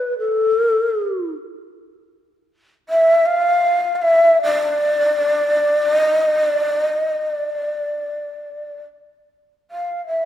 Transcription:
0.00 0.18 B4 medium
0.19 1.31 A4 medium
2.89 3.27 E5 loud
3.26 3.95 F5 loud
3.95 4.04 F5 medium
4.02 4.42 E5 loud
4.43 5.98 D5 loud
5.98 6.39 D#5 loud
6.39 6.85 D5 loud
6.85 7.27 D#5 loud
7.27 8.80 D5 loud
9.71 10.07 F5 medium
10.07 10.25 E5 medium

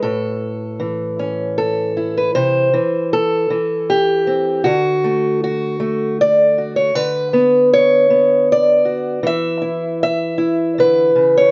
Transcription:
0.00 2.30 A2 medium
0.00 1.19 E4 soft
0.00 1.57 A4 medium
0.80 2.72 E3 medium
1.19 2.31 C#4 soft
1.58 2.16 A4 medium
1.97 2.31 E4 soft
2.17 2.34 B4 medium
2.35 2.74 C3 medium
2.35 3.12 C5 medium
2.73 3.49 E3 medium
3.13 4.64 A4 medium
3.50 4.66 E3 medium
3.90 4.66 G4 medium
4.27 4.61 C4 soft
4.64 6.90 D3 medium
4.64 5.41 F#4 medium
5.04 5.79 A3 medium
5.44 6.19 F#4 medium
5.80 6.90 A3 medium
6.21 6.76 D5 medium
6.58 6.91 F#4 soft
6.76 6.95 C#5 medium
6.95 9.20 D3 medium
6.95 7.71 B4 medium
7.33 8.10 B3 medium
7.73 8.49 C#5 medium
8.10 9.23 B3 medium
8.52 9.26 D5 medium
8.85 9.19 F#4 soft
9.23 11.51 E3 medium
9.23 10.02 E5 loud
9.62 10.37 E4 medium
10.03 11.37 E5 medium
10.38 11.50 E4 medium
10.78 11.15 D3 medium
10.78 11.51 B4 medium
11.15 11.51 C#3 medium
11.37 11.51 C#5 medium

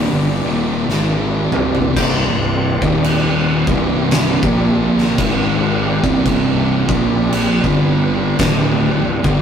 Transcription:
0.00 0.11 D#1 medium
0.00 0.11 D#2 medium
0.00 0.12 A#2 medium
0.00 1.92 C4 medium
0.00 1.93 G4 medium
0.00 1.92 D5 medium
0.13 0.42 G1 medium
0.13 0.43 G2 medium
0.13 0.44 D3 medium
0.45 0.86 D#1 medium
0.45 0.87 D#2 loud
0.45 0.88 A#2 loud
0.45 0.88 D#3 loud
0.89 1.48 G#1 medium
0.89 1.50 G#2 medium
0.89 1.51 D#3 loud
0.89 1.51 G#3 loud
0.89 snare medium
1.52 1.93 C1 medium
1.52 1.95 C2 medium
1.52 1.96 G2 medium
1.52 1.96 C3 medium
1.52 mid tom medium
1.75 floor tom medium
1.96 2.26 C1 loud
1.96 2.26 C2 loud
1.96 2.27 G2 loud
1.96 9.42 C4 medium
1.96 9.42 G4 medium
1.96 9.42 D5 medium
1.96 kick loud
1.96 crash loud
1.96 crash medium
2.29 2.78 C1 medium
2.29 2.73 C2 medium
2.29 2.73 G2 medium
2.82 3.63 D#1 loud
2.82 3.65 D#2 medium
2.82 3.65 A#2 medium
2.82 3.66 D#3 medium
2.82 kick loud
3.04 crash medium
3.67 4.39 C1 loud
3.67 4.41 C2 loud
3.67 4.41 G2 loud
3.67 4.41 C3 medium
3.67 kick loud
4.11 snare loud
4.11 crash medium
4.43 5.14 A#1 loud
4.43 5.17 A#2 medium
4.43 5.17 F3 medium
4.43 5.17 A#3 loud
4.43 kick loud
4.98 snare soft
5.18 5.99 G#1 medium
5.18 6.02 G#2 medium
5.18 6.02 D#3 loud
5.18 6.03 G#3 loud
5.18 kick loud
5.18 crash medium
6.04 6.85 C1 medium
6.04 6.87 C2 loud
6.04 6.87 G2 loud
6.04 6.87 C3 loud
6.04 kick loud
6.26 kick loud
6.26 crash medium
6.88 7.60 A#1 medium
6.88 7.62 A#2 medium
6.88 7.62 F3 loud
6.88 7.62 A#3 loud
6.88 kick loud
7.33 crash medium
7.64 8.35 G1 medium
7.64 8.38 G2 medium
7.64 8.38 D3 loud
7.64 8.39 G3 loud
7.64 kick loud
8.39 8.98 D1 loud
8.39 9.01 D2 loud
8.39 9.01 A2 loud
8.39 9.01 D3 loud
8.39 kick loud
8.39 snare loud
8.39 crash medium
9.03 9.23 C1 medium
9.03 9.24 C2 medium
9.03 9.23 G2 medium
9.24 9.42 G1 loud
9.24 9.42 G2 loud
9.24 9.42 D3 loud
9.24 kick loud

